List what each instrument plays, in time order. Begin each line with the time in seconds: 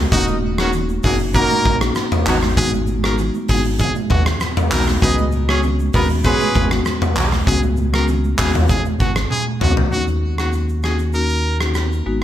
0.12 sub bass D#1, marimba A#3 C#4 D#4 F#4, horn section D#4 F#4 A#4 D#5, trumpet F#4, kick, hi-hat pedal, low conga, shaker
0.27 high conga, shaker
0.43 high conga
0.58 marimba A#3 C#4 D#4 F#4, horn section C#4 F#4 A#4 C#5, trumpet F#4, cross-stick, shaker
0.73 low conga, shaker
0.89 high conga, shaker
1.03 sub bass F#1, marimba A#3 C#4 D#4 F#4, horn section A#3 D#4 F#4 A#4, trumpet G#4, kick, open hi-hat, shaker
1.19 shaker
1.33 marimba A#3 C#4 D#4 F#4, horn section A#3 D#4 F#4 A#4, trumpet A#4, kick, hi-hat pedal, low conga, shaker
1.50 high conga, shaker
1.65 sub bass A#1, kick, high conga
1.81 marimba A#3 C#4 D#4 F#4, cross-stick, shaker
1.95 cross-stick, shaker
2.12 mid tom, high conga, shaker
2.26 sub bass G#1, horn section F#3 B3 D#4 F#4, marimba G#3 B3 D#4 F#4, clap, open hi-hat, low conga, shaker
2.42 cross-stick, high conga, shaker
2.57 marimba G#3 B3 D#4 F#4, trumpet G#4, kick, hi-hat pedal, low conga, shaker
2.73 high conga, shaker
2.87 high conga, shaker
3.03 marimba G#3 B3 D#4 F#4, trumpet A#4, cross-stick, shaker
3.18 low conga, shaker
3.34 high conga, shaker
3.48 sub bass G#1, marimba G#3 B3 D#4 F#4, trumpet G#4, kick, open hi-hat, shaker
3.64 shaker
3.78 trumpet G#4, kick, hi-hat pedal, low conga, shaker
3.95 high conga, shaker
4.10 sub bass D#2, trumpet F#4, kick, mid tom, high conga
4.26 cross-stick, shaker
4.40 cross-stick, shaker
4.57 mid tom, high conga, shaker
4.71 sub bass B1, marimba G#3 B3 D#4 F#4, trumpet A#4, clap, open hi-hat, low conga, shaker
4.87 cross-stick, high conga, shaker
5.02 sub bass C#2, marimba G#3 B3 C#4 F#4, horn section D#4 G#4 B4 D#5, trumpet G#4, kick, hi-hat pedal, low conga, shaker
5.18 high conga, shaker
5.32 high conga, shaker
5.48 marimba G#3 B3 C#4 F#4, horn section C#4 F#4 G#4 C#5, trumpet G#4, cross-stick, shaker
5.63 low conga, shaker
5.79 high conga, shaker
5.93 sub bass D#2, marimba G#3 B3 C#4 F#4, horn section B3 F#4 G#4 B4, trumpet A#4, kick, open hi-hat, shaker
6.09 shaker
6.24 marimba G#3 B3 C#4 F#4, horn section G#3 B3 C#4 G#4, trumpet B4, kick, hi-hat pedal, low conga, shaker
6.40 high conga, shaker
6.55 sub bass G#1, kick, mid tom, high conga, shaker
6.71 marimba G#3 B3 C#4 F#4, cross-stick, shaker
6.85 cross-stick, shaker
7.02 mid tom, high conga, shaker
7.16 sub bass B1, horn section F#3 B3 C#4 F#4, clap, open hi-hat, low conga, shaker
7.32 cross-stick, high conga, shaker
7.46 sub bass C#2, marimba G#3 B3 C#4 F#4, trumpet G#4, kick, hi-hat pedal, low conga, shaker
7.63 high conga, shaker
7.77 high conga, shaker
7.93 marimba G#3 B3 C#4 F#4, trumpet A#4, cross-stick, shaker
8.08 low conga, shaker
8.24 high conga, shaker
8.38 sub bass D#2, marimba G#3 B3 C#4 F#4, trumpet G#4, kick, cross-stick, clap, open hi-hat, shaker
8.54 mid tom, shaker
8.68 trumpet G#4, kick, hi-hat pedal, low conga, shaker
8.85 high conga, shaker
9.00 sub bass G#1, trumpet F#4, kick, high conga, shaker
9.16 cross-stick, shaker
9.31 trumpet G#4, high tom
9.47 high conga
9.61 sub bass C#2, marimba G#3 B3 C#4 F#4, trumpet F#4, mid tom, low conga
9.77 floor tom, high conga
9.92 sub bass D#2, marimba A#3 C#4 D#4 F#4, trumpet F#4, shaker
10.07 shaker
10.38 marimba A#3 C#4 D#4 F#4, trumpet F#4, cross-stick, shaker
10.53 shaker
10.69 shaker
10.83 marimba A#3 C#4 D#4 F#4, trumpet G#4, cross-stick, shaker
10.99 shaker
11.13 marimba A#3 C#4 D#4 F#4, trumpet A#4, shaker
11.30 shaker
11.60 marimba A#3 C#4 D#4 F#4, cross-stick, shaker
11.74 cross-stick, shaker
11.92 shaker
12.06 sub bass G#1, marimba G#3 B3 D#4 F#4